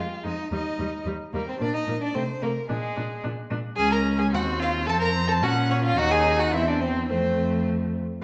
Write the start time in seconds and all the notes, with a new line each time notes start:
Already playing: F4
0.24 F2 G#3 D#4 D#5
0.52 D#2 G3 D#4 D#5
0.79 D#2 G3
1.06 D#2 G3
1.33 D#2 G3 A#3 A#4
1.48 C4 C5
1.60 A#2 A#3 D4 D5
1.74 D#4 D#5
1.88 A#2 A#3
2.02 D4 D5
2.15 C3 A3 C4 C5
2.42 C3 A3 A#3 A#4
2.69 A#2 G#3 D4 G#4
2.97 A#2 D4
3.24 A#2 D4
3.50 A#2 D4
3.76 C#2 C#4 G#4 G#5
3.92 A#4 A#5
4.19 G#4 G#5
4.32 D#2 C4 F#4 F#5
4.59 F4 F5
4.87 F2 C4 A4 A5
5.00 A#4 A#5
5.28 A4 A5
5.43 A#2 C#4 F#4 F#5
5.70 C#4 C#5
5.84 F4 F5
5.97 D#2 D#4 F#4 F#5
6.11 G#4 G#5
6.39 F#4 F#5
6.53 E2 C4 E4 E5
6.68 D4 D5
6.81 C4 C5
7.09 F2 A3 C4 C5